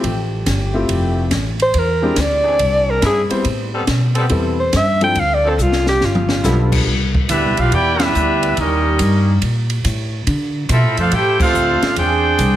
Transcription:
0.02 upright bass A1, trombone section F3 A3 G4, kick, ride
0.46 upright bass G1, kick, snare, hi-hat pedal, ride
0.74 upright piano A3 C4 E4 F4 G4
0.89 upright bass F1, kick, ride
1.31 upright bass A1, kick, snare, hi-hat pedal, ride
1.60 alto saxophone C5, ride
1.74 upright bass E2, kick, ride
1.78 alto saxophone A#4
2.02 upright piano G#3 C4 D4 E4 G4
2.16 upright bass D2, kick, snare, hi-hat pedal, ride
2.21 alto saxophone D5
2.43 trombone section E3 C4 D4 G#4
2.59 upright bass C2, kick, ride
2.90 alto saxophone A#4
3.02 upright bass G2, trombone section E3 C4 D4 E4, kick, snare, hi-hat pedal, ride
3.06 alto saxophone G#4
3.29 upright piano G3 B3 C4 E4 C5, muted upright bass stroke, ride
3.44 upright bass A2, kick, ride
3.73 trombone section G3 B3 C4 A4
3.87 upright bass B2, kick, snare, hi-hat pedal, ride
4.15 trombone section G3 B3 C4 A4, ride
4.29 upright bass E2, upright piano G3 B3 C4 E4 A4, kick, ride
4.60 alto saxophone C5
4.73 upright bass G2, alto saxophone E5, kick, snare, hi-hat pedal, ride
5.01 upright piano F3 C4 D4 E4 A4, alto saxophone G5, ride
5.15 upright bass D2, alto saxophone F5, kick, ride
5.34 alto saxophone D5
5.43 trombone section F3 C4 D4 A4
5.49 alto saxophone A4
5.58 upright bass C2, hi-hat pedal
5.62 alto saxophone F4
5.72 snare
5.86 alto saxophone G4, snare
6.00 upright bass G1, snare
6.05 alto saxophone F4
6.15 mid tom
6.29 snare
6.43 upright bass B1, trombone section F3 B3 D4 E4, upright piano G3 B3 D4 F4 A4, snare, hi-hat pedal
6.72 kick, crash
6.86 upright bass C2, kick
7.15 kick
7.28 upright bass D2, trombone section G3 B3 E4, trumpet section D4 G4 B4 E5, kick, hi-hat pedal, ride
7.43 upright bass C2
7.57 upright bass B1, trumpet section D4 G4 B4 F5, trombone section F4, ride
7.72 upright bass E2, trombone section B3 E4 G4, trumpet section E4 B4 D5 G5, kick, ride
8.00 trombone section G3 B3 E4, trumpet section D4 G4 B4 E5, snare, ride
8.15 upright bass D2, hi-hat pedal
8.43 ride
8.57 upright bass D#2, trombone section G3 A#3 D#4, trumpet section C#4 G4 A#4 D#5, kick, ride
8.99 upright bass G2, kick, hi-hat pedal, ride
9.42 upright bass A#2, kick, ride
9.70 ride
9.84 upright bass A2, kick, hi-hat pedal, ride
10.27 upright bass D3, kick, ride
10.69 upright bass B2, trumpet section C4 F4 A4 E5, trombone section E4, kick, hi-hat pedal, ride
10.83 upright bass A2
10.97 upright bass F2, trombone section A3 C4 F4, trumpet section D4 A4 C5 F5, ride
11.12 upright bass A2, trumpet section E4 A4 C5 G5, trombone section G4, kick, ride
11.40 trombone section A3 C4 F4, trumpet section D4 A4 C5 F5, kick, crash
11.53 upright bass D2, hi-hat pedal
11.81 muted upright bass stroke, snare, ride
11.96 upright bass E2, trombone section C4 D4 G#4, trumpet section D4 G#4 C5 G5, kick, ride
12.39 upright bass C2, kick, hi-hat pedal, ride

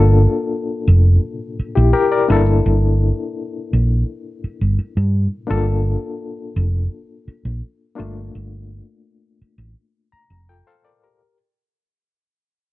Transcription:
Already playing: fingered electric bass G1, reed electric piano A#3 D4 F4 A4
0.88 fingered electric bass F1
1.59 muted fingered electric bass stroke
1.75 fingered electric bass A#1, reed electric piano E4 G4
1.93 reed electric piano G4 A#4
2.12 reed electric piano A#4 D5
2.28 fingered electric bass G1, reed electric piano A#3 D4 E4 A4
2.66 fingered electric bass G1
3.73 fingered electric bass A#1
4.44 muted fingered electric bass stroke
4.61 fingered electric bass G1
4.79 muted fingered electric bass stroke
4.97 fingered electric bass G2
5.47 fingered electric bass G1, reed electric piano A#3 D4 F4 A4
6.56 fingered electric bass F1
7.28 muted fingered electric bass stroke
7.45 fingered electric bass A#1
7.95 reed electric piano A3 A#3 D4 F4
7.99 fingered electric bass G1
8.35 fingered electric bass G1
9.42 muted fingered electric bass stroke
9.58 fingered electric bass A1
10.12 reed electric piano A#5, muted fingered electric bass stroke
10.30 fingered electric bass F1
10.49 reed electric piano F4 A4 G5
10.67 reed electric piano A4 C5 F5
10.85 reed electric piano A#4 D5
11.04 reed electric piano G4 A#4

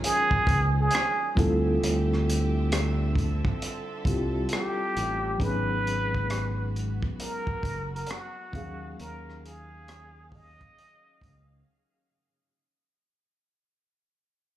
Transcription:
Already playing: string section D#3 F#3 C#4 G#4, reed electric piano G#3 C#4 F4 F#4 A#4
0.04 muted trumpet G#4, closed hi-hat
0.31 kick
0.47 fingered electric bass C#2, kick, closed hi-hat
0.80 muted trumpet G#4
0.91 closed hi-hat
0.95 cross-stick
1.35 fingered electric bass D2, string section D3 C4 G4 E5, reed electric piano G3 C4 E4 F4, kick, closed hi-hat
1.40 reed electric piano A4
1.83 fingered electric bass D2, closed hi-hat
2.13 cross-stick
2.30 closed hi-hat
2.72 cross-stick, closed hi-hat
3.15 string section A4, kick, closed hi-hat
3.45 kick
3.62 closed hi-hat
4.05 fingered electric bass C2, reed electric piano G3 C4 E4 F4 G4, kick, closed hi-hat
4.49 closed hi-hat
4.53 muted trumpet G4, cross-stick
4.97 fingered electric bass A1, closed hi-hat
5.38 fingered electric bass G#1, reed electric piano F#3 B3 C#4 D#4, string section G#3 B3 F#4, kick, closed hi-hat
5.42 reed electric piano G#4, muted trumpet B4
5.87 closed hi-hat
6.14 kick
6.30 cross-stick, closed hi-hat
6.76 closed hi-hat
7.03 kick
7.20 muted trumpet A#4, closed hi-hat
7.47 kick
7.63 fingered electric bass F#1, kick, closed hi-hat
7.95 muted trumpet A#4, closed hi-hat
8.07 closed hi-hat
8.11 muted trumpet F#4, cross-stick
8.52 fingered electric bass D#2, string section D#3 C#4 G#4 F5, reed electric piano F3 A#3 C#4 F5, kick, closed hi-hat
8.57 reed electric piano F#3 G#4
9.00 fingered electric bass D#2, muted trumpet A#4, closed hi-hat
9.30 cross-stick
9.45 muted trumpet G#4, closed hi-hat
9.88 cross-stick, closed hi-hat
10.32 muted trumpet D#5, kick, open hi-hat
10.61 kick, closed hi-hat
10.79 closed hi-hat
11.21 fingered electric bass C#2, kick, closed hi-hat

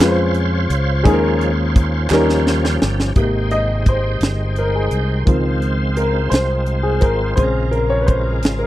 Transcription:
Already playing: upright piano C#3 C5
0.00 fingered electric bass F2, upright piano G#3 C#4 F4 B4, tonewheel organ F4 C5 C#5, snare, clap
0.08 upright piano C5
0.34 closed hi-hat
0.70 fingered electric bass C#2, closed hi-hat
1.04 fingered electric bass D#2, upright piano D#3 G#3 C#4 D#4 G#4, tonewheel organ F3 G#3 C#4, kick, closed hi-hat
1.14 upright piano A#4
1.41 closed hi-hat
1.76 kick, closed hi-hat
2.10 fingered electric bass D#2, upright piano D#3 G3 C#4 D#4, tonewheel organ F3 C#4 G4, snare, clap
2.14 upright piano A#4
2.30 snare
2.47 snare
2.65 snare
2.82 fingered electric bass G1, snare
3.00 snare
3.16 fingered electric bass G#1, upright piano C3 A#3 G4, tonewheel organ G#3 D#4 B4 G5, kick, closed hi-hat
3.23 tonewheel organ C5
3.51 upright piano D#5, closed hi-hat
3.86 upright piano C5, kick, closed hi-hat
4.21 fingered electric bass G1, snare, closed hi-hat
4.56 upright piano A#4, closed hi-hat
4.75 upright piano G#4
4.91 fingered electric bass C2, closed hi-hat
5.25 fingered electric bass C#2, upright piano D#3 F3 C4, tonewheel organ G#3 C4 F4 C5, kick, closed hi-hat
5.62 closed hi-hat
5.97 upright piano A#4, closed hi-hat
6.30 fingered electric bass C2, upright piano C5, snare, closed hi-hat
6.66 closed hi-hat
6.83 upright piano G#4
7.01 fingered electric bass G#1, upright piano A#4, kick, closed hi-hat
7.36 fingered electric bass A#1, upright piano C#3 G#3 C4 C5, tonewheel organ C#3 G#3 F4 G#4, kick, closed hi-hat
7.44 tonewheel organ A#4
7.71 upright piano A#4, closed hi-hat
7.90 upright piano C#5
8.01 upright piano B4
8.07 upright piano C5, kick, closed hi-hat
8.43 fingered electric bass G#1, snare, closed hi-hat
8.59 upright piano A#4

